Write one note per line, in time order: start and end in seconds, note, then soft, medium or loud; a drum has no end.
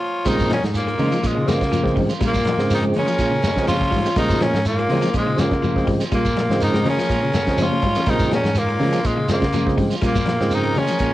0.00 0.29 F3 medium
0.00 0.29 F4 loud
0.00 0.30 C#5 medium
0.25 0.60 A#2 loud
0.25 0.56 C#3 medium
0.25 0.49 D#3 medium
0.25 0.56 F3 medium
0.25 0.45 G3 medium
0.25 0.39 G#3 medium
0.25 0.56 G#3 medium
0.25 0.56 C4 medium
0.25 0.38 C#4 medium
0.25 0.51 D#4 loud
0.25 0.37 F4 medium
0.25 0.52 A#4 loud
0.25 kick loud
0.25 closed hi-hat medium
0.25 high conga soft
0.25 shekere medium
0.38 muted clean electric guitar stroke soft
0.38 kick medium
0.38 closed hi-hat soft
0.38 high conga medium
0.38 shekere medium
0.49 0.61 C#3 medium
0.49 0.69 F3 medium
0.49 0.63 A#4 medium
0.49 muted clean electric guitar stroke soft
0.49 snare medium
0.49 closed hi-hat medium
0.49 high conga medium
0.53 0.64 C#4 medium
0.63 0.97 G#2 medium
0.63 muted clean electric guitar stroke soft
0.63 snare medium
0.63 closed hi-hat soft
0.63 shekere soft
0.73 1.25 A#2 medium
0.73 1.28 A#3 medium
0.73 1.27 F4 medium
0.73 muted clean electric guitar stroke soft
0.73 closed hi-hat medium
0.73 high conga soft
0.73 shekere medium
0.87 1.06 G#3 medium
0.87 closed hi-hat soft
0.98 1.11 C#3 medium
0.98 1.19 C#3 medium
0.98 1.19 F3 medium
0.98 1.12 G#3 medium
0.98 1.19 G#3 medium
0.98 1.12 C#4 medium
0.98 1.19 D#4 medium
0.98 1.11 F4 medium
0.98 open hi-hat medium
0.98 high conga medium
0.98 low conga medium
0.98 shekere soft
1.12 1.31 F3 medium
1.12 1.21 C#4 soft
1.12 1.22 F4 medium
1.12 closed hi-hat soft
1.12 shekere medium
1.22 1.48 G#2 medium
1.22 1.46 A#2 medium
1.22 1.36 G#3 medium
1.22 1.35 C#4 medium
1.22 1.34 F4 medium
1.22 kick medium
1.22 closed hi-hat medium
1.22 shekere medium
1.27 1.50 G#3 medium
1.27 1.49 F4 medium
1.36 1.56 C#3 medium
1.36 muted clean electric guitar stroke soft
1.46 1.96 A#2 medium
1.46 1.63 C#3 medium
1.46 1.62 F3 medium
1.46 1.63 G#3 medium
1.46 1.63 A#3 loud
1.46 1.97 A#3 medium
1.46 1.98 F4 medium
1.46 muted clean electric guitar stroke soft
1.46 snare medium
1.46 closed hi-hat medium
1.46 high conga loud
1.46 shekere medium
1.61 1.94 C#3 medium
1.61 kick medium
1.61 snare medium
1.61 closed hi-hat soft
1.61 shekere soft
1.72 1.91 F3 medium
1.72 1.85 G#3 medium
1.72 1.84 C#4 medium
1.72 1.83 F4 medium
1.72 closed hi-hat medium
1.72 high conga medium
1.72 shekere medium
1.83 2.13 C#3 medium
1.83 2.13 F3 medium
1.83 2.13 G#3 medium
1.83 2.13 C4 medium
1.83 muted clean electric guitar stroke soft
1.83 kick medium
1.83 snare soft
1.95 2.09 G#2 medium
1.95 2.15 G3 medium
1.95 muted clean electric guitar stroke soft
1.95 kick medium
1.95 open hi-hat medium
1.95 low conga medium
1.95 shekere soft
2.09 2.19 C#4 soft
2.09 2.20 F4 medium
2.09 closed hi-hat soft
2.09 shekere medium
2.20 2.56 A#2 medium
2.20 2.40 G3 medium
2.20 2.34 G#3 medium
2.20 2.32 C#4 medium
2.20 2.32 F4 medium
2.20 kick loud
2.20 closed hi-hat medium
2.20 high conga soft
2.20 shekere medium
2.24 2.68 A#2 medium
2.24 2.70 A#3 loud
2.24 2.69 F4 medium
2.33 muted clean electric guitar stroke soft
2.33 kick medium
2.33 high conga medium
2.33 shekere medium
2.45 2.64 F3 medium
2.45 muted clean electric guitar stroke soft
2.45 snare medium
2.45 closed hi-hat medium
2.49 high conga loud
2.57 2.91 G#2 medium
2.57 2.97 C#3 medium
2.57 2.97 F3 medium
2.57 2.97 G#3 medium
2.57 2.97 C4 medium
2.57 muted clean electric guitar stroke soft
2.57 snare medium
2.57 shekere soft
2.70 2.84 D#3 medium
2.70 2.83 A#4 medium
2.70 muted clean electric guitar stroke soft
2.70 snare soft
2.70 closed hi-hat medium
2.70 shekere loud
2.75 2.85 D#4 loud
2.83 3.02 G#3 medium
2.83 closed hi-hat soft
2.93 3.06 C#3 medium
2.93 3.65 C#3 medium
2.93 3.08 G#3 medium
2.93 3.09 C#4 medium
2.93 3.07 F4 medium
2.93 open hi-hat medium
2.93 high conga medium
2.93 low conga medium
2.93 shekere soft
2.98 3.66 C#4 loud
2.98 3.66 A#4 medium
3.06 3.25 F3 medium
3.06 3.19 C#4 soft
3.06 3.19 F4 medium
3.06 closed hi-hat soft
3.06 shekere medium
3.18 3.41 A#2 loud
3.18 3.33 G#3 medium
3.18 3.32 C#4 medium
3.18 3.32 F4 medium
3.18 kick medium
3.18 closed hi-hat medium
3.18 shekere medium
3.23 high conga soft
3.32 3.50 C#3 medium
3.32 muted clean electric guitar stroke soft
3.42 muted clean electric guitar stroke soft
3.42 muted fingered electric bass stroke soft
3.42 snare medium
3.42 closed hi-hat medium
3.42 shekere medium
3.47 high conga loud
3.56 3.89 C#3 medium
3.56 3.77 C#3 medium
3.56 3.76 F3 medium
3.56 3.76 G#3 medium
3.56 3.76 C4 medium
3.56 kick medium
3.56 snare medium
3.56 shekere soft
3.66 4.13 F3 loud
3.66 3.86 F3 medium
3.66 3.80 G#3 medium
3.66 3.80 C#4 medium
3.66 3.80 F4 medium
3.66 4.14 F4 loud
3.66 4.14 C#5 medium
3.66 closed hi-hat medium
3.66 shekere loud
3.71 high conga medium
3.81 muted clean electric guitar stroke soft
3.81 kick medium
3.81 snare soft
3.91 4.04 G#2 loud
3.91 4.10 G3 medium
3.91 muted clean electric guitar stroke soft
3.91 kick medium
3.91 open hi-hat medium
3.91 shekere soft
3.96 low conga medium
4.04 4.10 G#3 medium
4.04 4.10 C4 medium
4.04 4.16 C#4 medium
4.04 4.16 F4 medium
4.04 snare soft
4.04 closed hi-hat soft
4.04 shekere medium
4.16 4.51 A#2 loud
4.16 4.46 C#3 medium
4.16 4.45 D#3 loud
4.16 4.46 F3 medium
4.16 4.35 G3 medium
4.16 4.30 G#3 medium
4.16 4.46 G#3 medium
4.16 4.29 C#4 medium
4.16 4.46 D#4 medium
4.16 4.44 D#4 loud
4.16 4.29 F4 medium
4.16 4.42 A#4 loud
4.16 kick medium
4.16 snare soft
4.16 closed hi-hat medium
4.16 shekere medium
4.29 muted clean electric guitar stroke medium
4.29 kick medium
4.29 snare soft
4.29 closed hi-hat soft
4.29 shekere medium
4.33 high conga medium
4.40 4.67 C#3 medium
4.40 4.59 F3 medium
4.40 4.66 C#4 loud
4.40 4.64 A#4 medium
4.40 snare medium
4.40 closed hi-hat medium
4.40 high conga loud
4.53 4.87 G#2 medium
4.53 muted clean electric guitar stroke soft
4.53 snare medium
4.53 closed hi-hat soft
4.53 low conga medium
4.53 shekere soft
4.65 5.12 A#3 medium
4.65 5.11 F4 medium
4.65 muted clean electric guitar stroke soft
4.65 closed hi-hat medium
4.65 high conga soft
4.65 shekere loud
4.69 5.13 A#2 medium
4.79 4.97 G#3 medium
4.79 closed hi-hat soft
4.89 5.01 C#3 medium
4.89 5.10 C#3 medium
4.89 5.10 F3 medium
4.89 5.03 G#3 medium
4.89 5.10 G#3 medium
4.89 5.11 C4 medium
4.89 5.03 C#4 medium
4.89 5.00 F4 medium
4.89 open hi-hat medium
4.89 high conga medium
4.89 low conga medium
4.89 shekere soft
5.01 5.21 F3 medium
5.01 5.13 F4 medium
5.01 snare soft
5.01 closed hi-hat soft
5.01 shekere medium
5.14 5.42 G#2 medium
5.14 5.37 A#2 loud
5.14 5.27 G#3 medium
5.14 5.41 G#3 loud
5.14 5.27 C#4 medium
5.14 5.26 F4 medium
5.14 5.40 F4 medium
5.14 kick medium
5.14 closed hi-hat medium
5.14 shekere medium
5.27 5.46 C#3 medium
5.27 muted clean electric guitar stroke medium
5.36 5.88 A#2 medium
5.36 5.53 C#3 medium
5.36 5.53 F3 medium
5.36 5.53 G#3 medium
5.36 5.88 A#3 medium
5.36 5.54 C#4 medium
5.36 5.88 F4 medium
5.36 muted clean electric guitar stroke soft
5.36 muted fingered electric bass stroke soft
5.36 snare medium
5.36 closed hi-hat medium
5.36 high conga loud
5.36 shekere medium
5.51 5.85 C#3 medium
5.51 kick medium
5.51 snare medium
5.51 closed hi-hat soft
5.51 shekere soft
5.62 5.81 F3 medium
5.62 5.76 G#3 medium
5.62 5.76 C#4 medium
5.62 5.75 F4 medium
5.62 closed hi-hat medium
5.62 high conga medium
5.62 shekere loud
5.76 6.05 C#3 medium
5.76 6.05 F3 medium
5.76 6.05 G#3 medium
5.76 6.05 C4 medium
5.76 muted clean electric guitar stroke soft
5.76 kick medium
5.76 snare soft
5.87 6.00 G#2 medium
5.87 6.06 G3 medium
5.87 muted clean electric guitar stroke soft
5.87 kick medium
5.87 open hi-hat medium
5.87 low conga medium
5.87 shekere soft
6.00 6.10 C#4 soft
6.00 6.11 F4 medium
6.00 snare soft
6.00 closed hi-hat soft
6.00 shekere medium
6.11 6.47 A#2 medium
6.11 6.59 A#2 medium
6.11 6.31 G3 medium
6.11 6.25 G#3 medium
6.11 6.59 A#3 medium
6.11 6.23 C#4 medium
6.11 6.24 F4 medium
6.11 kick medium
6.11 closed hi-hat medium
6.11 high conga soft
6.11 shekere medium
6.15 6.59 F4 medium
6.25 muted clean electric guitar stroke soft
6.25 kick medium
6.25 shekere medium
6.36 6.55 F3 medium
6.36 muted clean electric guitar stroke soft
6.36 snare medium
6.36 closed hi-hat medium
6.36 high conga loud
6.49 6.83 G#2 medium
6.49 6.88 C#3 medium
6.49 6.88 F3 medium
6.49 6.89 G#3 medium
6.49 6.88 C4 medium
6.49 muted clean electric guitar stroke soft
6.49 snare medium
6.49 low conga medium
6.49 shekere soft
6.59 6.84 D#3 medium
6.59 6.84 A#4 medium
6.59 muted clean electric guitar stroke soft
6.59 snare soft
6.59 closed hi-hat medium
6.59 high conga soft
6.59 shekere loud
6.64 6.85 D#4 loud
6.73 6.93 G#3 medium
6.73 snare medium
6.73 closed hi-hat soft
6.83 6.97 C#3 medium
6.83 7.59 C#3 medium
6.83 6.97 G#3 medium
6.83 6.97 C#4 medium
6.83 6.96 F4 medium
6.83 7.61 A#4 medium
6.83 open hi-hat medium
6.83 high conga medium
6.83 low conga medium
6.83 shekere soft
6.90 7.64 C#4 loud
6.98 7.17 F3 medium
6.98 7.09 F4 medium
6.98 snare soft
6.98 closed hi-hat soft
6.98 shekere medium
7.09 7.32 A#2 medium
7.09 7.23 G#3 medium
7.09 7.20 C#4 medium
7.09 7.20 F4 medium
7.09 kick medium
7.09 closed hi-hat medium
7.09 shekere medium
7.21 7.42 C#3 medium
7.21 muted clean electric guitar stroke soft
7.33 muted clean electric guitar stroke soft
7.33 muted fingered electric bass stroke soft
7.33 snare medium
7.33 closed hi-hat medium
7.33 high conga loud
7.33 shekere loud
7.46 7.80 C#3 medium
7.46 7.67 C#3 medium
7.46 7.68 F3 medium
7.46 7.67 G#3 medium
7.46 7.67 C4 medium
7.46 kick medium
7.46 snare medium
7.46 shekere soft
7.57 8.08 F3 medium
7.57 7.77 F3 medium
7.57 7.71 G#3 medium
7.57 7.70 C#4 medium
7.57 8.11 C#5 loud
7.57 snare soft
7.57 closed hi-hat medium
7.57 high conga medium
7.57 shekere medium
7.62 8.11 F4 loud
7.71 muted clean electric guitar stroke soft
7.71 high conga loud
7.82 7.95 G#2 medium
7.82 8.02 G3 medium
7.82 kick medium
7.82 closed hi-hat medium
7.82 high conga medium
7.82 shekere soft
7.95 8.01 G#3 medium
7.95 8.01 A#3 medium
7.95 8.07 C#4 soft
7.95 8.07 F4 medium
7.95 closed hi-hat soft
7.95 low conga medium
7.95 shekere medium
8.06 8.42 A#2 loud
8.06 8.37 C#3 medium
8.06 8.31 D#3 medium
8.06 8.37 F3 medium
8.06 8.26 G3 medium
8.06 8.21 G#3 medium
8.06 8.37 G#3 medium
8.06 8.37 C4 medium
8.06 8.20 C#4 medium
8.06 8.20 F4 medium
8.06 8.32 A#4 loud
8.06 kick medium
8.06 snare soft
8.06 closed hi-hat medium
8.06 high conga soft
8.06 shekere medium
8.10 8.33 D#4 loud
8.19 muted clean electric guitar stroke soft
8.19 kick medium
8.19 snare soft
8.19 closed hi-hat soft
8.19 shekere medium
8.31 8.59 C#3 medium
8.31 8.50 F3 medium
8.31 8.60 C#4 loud
8.31 8.58 A#4 medium
8.31 muted clean electric guitar stroke soft
8.31 snare medium
8.31 closed hi-hat medium
8.31 high conga loud
8.44 8.77 G#2 medium
8.44 muted clean electric guitar stroke soft
8.44 snare medium
8.44 closed hi-hat soft
8.44 low conga medium
8.44 shekere soft
8.55 9.05 A#2 medium
8.55 9.08 A#3 loud
8.55 9.06 F4 medium
8.55 muted clean electric guitar stroke soft
8.55 closed hi-hat medium
8.55 high conga soft
8.55 shekere medium
8.68 muted clean electric guitar stroke medium
8.68 closed hi-hat soft
8.79 8.92 C#3 medium
8.79 9.00 C#3 medium
8.79 9.00 F3 medium
8.79 8.94 G#3 medium
8.79 9.00 G#3 medium
8.79 9.00 C#4 medium
8.79 8.93 C#4 medium
8.79 8.92 F4 medium
8.79 open hi-hat medium
8.79 high conga medium
8.79 low conga medium
8.79 shekere soft
8.92 9.12 F3 medium
8.92 9.04 C#4 soft
8.92 9.04 F4 medium
8.92 snare soft
8.92 closed hi-hat soft
8.92 shekere medium
9.03 9.29 G#2 medium
9.03 9.27 A#2 loud
9.03 9.18 G#3 medium
9.03 9.30 G#3 medium
9.03 9.17 C#4 medium
9.03 9.16 F4 medium
9.03 9.30 F4 medium
9.03 kick medium
9.03 closed hi-hat medium
9.03 high conga soft
9.03 shekere medium
9.17 9.36 C#3 medium
9.17 muted clean electric guitar stroke soft
9.28 9.75 A#2 medium
9.28 9.45 C#3 medium
9.28 9.46 F3 medium
9.28 9.46 G#3 medium
9.28 9.46 C4 loud
9.28 9.76 F4 medium
9.28 muted clean electric guitar stroke soft
9.28 muted fingered electric bass stroke soft
9.28 snare medium
9.28 closed hi-hat medium
9.28 high conga loud
9.28 shekere loud
9.33 9.77 A#3 medium
9.41 9.75 C#3 medium
9.41 kick medium
9.41 snare medium
9.41 closed hi-hat soft
9.41 shekere soft
9.52 9.73 F3 medium
9.52 9.68 G#3 medium
9.52 9.66 C#4 medium
9.52 9.66 F4 medium
9.52 closed hi-hat medium
9.52 high conga medium
9.52 shekere loud
9.66 9.96 C#3 medium
9.66 9.96 F3 medium
9.66 9.96 G#3 medium
9.66 9.95 C4 medium
9.66 muted clean electric guitar stroke soft
9.66 kick medium
9.66 snare soft
9.77 9.90 G#2 medium
9.77 9.97 G3 medium
9.77 muted clean electric guitar stroke soft
9.77 kick medium
9.77 open hi-hat medium
9.77 low conga medium
9.77 shekere soft
9.90 10.01 C#4 medium
9.90 10.01 F4 medium
9.90 closed hi-hat soft
9.90 shekere medium
10.01 10.37 A#2 loud
10.01 10.55 A#2 medium
10.01 10.21 G3 medium
10.01 10.15 G#3 medium
10.01 10.16 C#4 medium
10.01 10.15 F4 medium
10.01 kick medium
10.01 snare soft
10.01 closed hi-hat medium
10.01 shekere medium
10.06 10.56 A#3 loud
10.06 10.56 F4 medium
10.15 muted clean electric guitar stroke soft
10.15 kick medium
10.15 high conga medium
10.15 shekere loud
10.26 10.45 F3 medium
10.26 snare medium
10.26 closed hi-hat medium
10.26 high conga loud
10.40 10.74 G#2 medium
10.40 10.79 C#3 medium
10.40 10.79 F3 medium
10.40 10.79 G#3 medium
10.40 10.79 C4 medium
10.40 muted clean electric guitar stroke soft
10.40 snare medium
10.40 shekere soft
10.51 10.80 D#3 medium
10.51 10.79 D#4 loud
10.51 10.80 A#4 medium
10.51 muted clean electric guitar stroke soft
10.51 closed hi-hat medium
10.51 shekere medium
10.64 10.83 G#3 medium
10.64 closed hi-hat soft
10.75 10.88 C#3 medium
10.75 11.14 C#3 medium
10.75 10.90 G#3 medium
10.75 10.89 C#4 medium
10.75 11.14 C#4 loud
10.75 10.88 F4 medium
10.75 open hi-hat medium
10.75 high conga medium
10.75 low conga medium
10.75 shekere soft
10.80 11.14 A#4 medium
10.87 11.08 F3 medium
10.87 11.01 C#4 soft
10.87 11.01 F4 medium
10.87 closed hi-hat soft
10.87 shekere medium
10.99 11.14 A#2 loud
10.99 11.14 G#3 medium
10.99 11.14 C#4 medium
10.99 11.14 F4 medium
10.99 kick medium
10.99 closed hi-hat medium
10.99 high conga soft
10.99 shekere medium